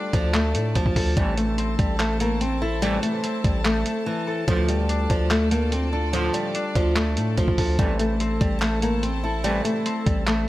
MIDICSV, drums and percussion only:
0, 0, Header, 1, 2, 480
1, 0, Start_track
1, 0, Key_signature, -1, "minor"
1, 0, Tempo, 413793
1, 1355, Time_signature, 4, 2, 24, 8
1, 12164, End_track
2, 0, Start_track
2, 0, Title_t, "Drums"
2, 155, Note_on_c, 9, 42, 77
2, 156, Note_on_c, 9, 36, 95
2, 271, Note_off_c, 9, 42, 0
2, 272, Note_off_c, 9, 36, 0
2, 396, Note_on_c, 9, 39, 118
2, 512, Note_off_c, 9, 39, 0
2, 635, Note_on_c, 9, 42, 82
2, 751, Note_off_c, 9, 42, 0
2, 875, Note_on_c, 9, 42, 77
2, 877, Note_on_c, 9, 36, 93
2, 991, Note_off_c, 9, 42, 0
2, 993, Note_off_c, 9, 36, 0
2, 995, Note_on_c, 9, 36, 105
2, 1111, Note_off_c, 9, 36, 0
2, 1115, Note_on_c, 9, 36, 103
2, 1116, Note_on_c, 9, 46, 78
2, 1231, Note_off_c, 9, 36, 0
2, 1232, Note_off_c, 9, 46, 0
2, 1355, Note_on_c, 9, 42, 79
2, 1356, Note_on_c, 9, 36, 123
2, 1471, Note_off_c, 9, 42, 0
2, 1472, Note_off_c, 9, 36, 0
2, 1595, Note_on_c, 9, 42, 78
2, 1711, Note_off_c, 9, 42, 0
2, 1835, Note_on_c, 9, 42, 78
2, 1951, Note_off_c, 9, 42, 0
2, 2075, Note_on_c, 9, 42, 75
2, 2076, Note_on_c, 9, 36, 100
2, 2191, Note_off_c, 9, 42, 0
2, 2192, Note_off_c, 9, 36, 0
2, 2315, Note_on_c, 9, 42, 80
2, 2316, Note_on_c, 9, 39, 117
2, 2431, Note_off_c, 9, 42, 0
2, 2432, Note_off_c, 9, 39, 0
2, 2555, Note_on_c, 9, 42, 83
2, 2671, Note_off_c, 9, 42, 0
2, 2795, Note_on_c, 9, 42, 75
2, 2911, Note_off_c, 9, 42, 0
2, 3275, Note_on_c, 9, 42, 81
2, 3391, Note_off_c, 9, 42, 0
2, 3515, Note_on_c, 9, 42, 75
2, 3631, Note_off_c, 9, 42, 0
2, 3755, Note_on_c, 9, 42, 76
2, 3871, Note_off_c, 9, 42, 0
2, 3995, Note_on_c, 9, 36, 95
2, 3995, Note_on_c, 9, 42, 75
2, 4111, Note_off_c, 9, 36, 0
2, 4111, Note_off_c, 9, 42, 0
2, 4236, Note_on_c, 9, 39, 118
2, 4352, Note_off_c, 9, 39, 0
2, 4475, Note_on_c, 9, 42, 82
2, 4591, Note_off_c, 9, 42, 0
2, 5195, Note_on_c, 9, 36, 125
2, 5195, Note_on_c, 9, 42, 83
2, 5311, Note_off_c, 9, 36, 0
2, 5311, Note_off_c, 9, 42, 0
2, 5435, Note_on_c, 9, 42, 78
2, 5551, Note_off_c, 9, 42, 0
2, 5676, Note_on_c, 9, 42, 77
2, 5792, Note_off_c, 9, 42, 0
2, 5915, Note_on_c, 9, 36, 98
2, 5915, Note_on_c, 9, 42, 75
2, 6031, Note_off_c, 9, 36, 0
2, 6031, Note_off_c, 9, 42, 0
2, 6155, Note_on_c, 9, 42, 79
2, 6156, Note_on_c, 9, 39, 117
2, 6271, Note_off_c, 9, 42, 0
2, 6272, Note_off_c, 9, 39, 0
2, 6396, Note_on_c, 9, 42, 82
2, 6512, Note_off_c, 9, 42, 0
2, 6636, Note_on_c, 9, 42, 76
2, 6752, Note_off_c, 9, 42, 0
2, 7116, Note_on_c, 9, 42, 82
2, 7232, Note_off_c, 9, 42, 0
2, 7356, Note_on_c, 9, 42, 80
2, 7472, Note_off_c, 9, 42, 0
2, 7595, Note_on_c, 9, 42, 76
2, 7711, Note_off_c, 9, 42, 0
2, 7835, Note_on_c, 9, 42, 74
2, 7836, Note_on_c, 9, 36, 96
2, 7951, Note_off_c, 9, 42, 0
2, 7952, Note_off_c, 9, 36, 0
2, 8076, Note_on_c, 9, 39, 115
2, 8192, Note_off_c, 9, 39, 0
2, 8316, Note_on_c, 9, 42, 83
2, 8432, Note_off_c, 9, 42, 0
2, 8555, Note_on_c, 9, 42, 74
2, 8557, Note_on_c, 9, 36, 91
2, 8671, Note_off_c, 9, 42, 0
2, 8673, Note_off_c, 9, 36, 0
2, 8675, Note_on_c, 9, 36, 99
2, 8791, Note_off_c, 9, 36, 0
2, 8794, Note_on_c, 9, 46, 84
2, 8795, Note_on_c, 9, 36, 97
2, 8910, Note_off_c, 9, 46, 0
2, 8911, Note_off_c, 9, 36, 0
2, 9035, Note_on_c, 9, 36, 120
2, 9035, Note_on_c, 9, 42, 85
2, 9151, Note_off_c, 9, 36, 0
2, 9151, Note_off_c, 9, 42, 0
2, 9274, Note_on_c, 9, 42, 78
2, 9390, Note_off_c, 9, 42, 0
2, 9514, Note_on_c, 9, 42, 74
2, 9630, Note_off_c, 9, 42, 0
2, 9754, Note_on_c, 9, 42, 75
2, 9755, Note_on_c, 9, 36, 95
2, 9870, Note_off_c, 9, 42, 0
2, 9871, Note_off_c, 9, 36, 0
2, 9995, Note_on_c, 9, 42, 77
2, 9996, Note_on_c, 9, 39, 120
2, 10111, Note_off_c, 9, 42, 0
2, 10112, Note_off_c, 9, 39, 0
2, 10235, Note_on_c, 9, 42, 82
2, 10351, Note_off_c, 9, 42, 0
2, 10475, Note_on_c, 9, 42, 74
2, 10591, Note_off_c, 9, 42, 0
2, 10955, Note_on_c, 9, 42, 82
2, 11071, Note_off_c, 9, 42, 0
2, 11195, Note_on_c, 9, 42, 77
2, 11311, Note_off_c, 9, 42, 0
2, 11436, Note_on_c, 9, 42, 79
2, 11552, Note_off_c, 9, 42, 0
2, 11676, Note_on_c, 9, 36, 98
2, 11676, Note_on_c, 9, 42, 76
2, 11792, Note_off_c, 9, 36, 0
2, 11792, Note_off_c, 9, 42, 0
2, 11916, Note_on_c, 9, 39, 117
2, 12032, Note_off_c, 9, 39, 0
2, 12164, End_track
0, 0, End_of_file